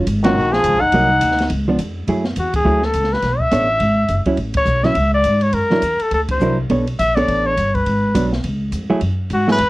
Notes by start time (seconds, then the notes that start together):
0.07 G#1, kick, hi-hat pedal, ride
0.23 D#3 F#3 C#4 F4 F#4, snare, ride
0.35 A#1
0.53 F3 G#4, snare
0.64 C#2, kick, hi-hat pedal, ride
0.74 A#1
0.81 F#1 D#4 F#5
0.92 C2 F#3 A#3 D#4, kick, ride
1.21 D2, kick, hi-hat pedal, ride
1.31 snare
1.38 snare, ride
1.50 C#2, kick, ride
1.68 F3 B3 D4
1.79 F2, kick, hi-hat pedal, ride
2.07 F#2 F#3 A3 E4 G#4, kick, ride
2.25 snare
2.36 E2 F#4, kick, hi-hat pedal, ride
2.54 G#4, kick, ride
2.65 D2 F#3 A3 E4 G#4
2.82 A4, snare
2.93 C#2, kick, hi-hat pedal, ride
3.04 snare
3.13 B4, snare
3.22 B1, kick, snare, ride
3.40 E5, kick
3.51 A1 B3 D4 A4 C#5, hi-hat pedal, ride
3.80 G#1, kick, ride
4.08 F#1, kick, hi-hat pedal, ride
4.25 F#3 C#4 E4, muted upright bass stroke, kick, ride
4.37 A1, kick, ride
4.54 C#5, kick, ride
4.65 B1, hi-hat pedal
4.83 F#3 C#4 E4 E5, snare
4.95 C#2, kick, ride
5.14 D5
5.24 G#2, kick, hi-hat pedal, ride
5.41 C#5, ride
5.52 F#2 A#4, kick, ride
5.70 F#3 D4 E4 A#4, snare
5.82 E2, kick, hi-hat pedal, ride
5.99 A4, muted upright bass stroke, ride
6.11 D2 A4, kick, ride
6.29 C5, kick, ride
6.40 C2 F#3 D4 E4 A#4, hi-hat pedal
6.70 B1 B3 D4 A4 C#5, kick, ride
6.87 ride
6.99 A#1 E5, kick, hi-hat pedal, ride
7.15 B3 D4 A4 C#5 D5, ride
7.28 A1, kick, ride
7.46 C#5
7.57 G1, kick, hi-hat pedal, ride
7.75 B4, kick, ride
7.86 G#1, kick, ride
8.15 B1 F#3 B3 D4, kick, hi-hat pedal, ride
8.33 snare
8.44 C#2, kick, ride
8.72 F2, kick, hi-hat pedal, ride
8.90 F#3 A3 E4 G#4, muted upright bass stroke
9.01 F#2, kick, ride
9.30 G#2 F#4, kick, hi-hat pedal, ride
9.48 F#3 A3 E4 G#4, snare
9.52 B4
9.58 E2, kick, ride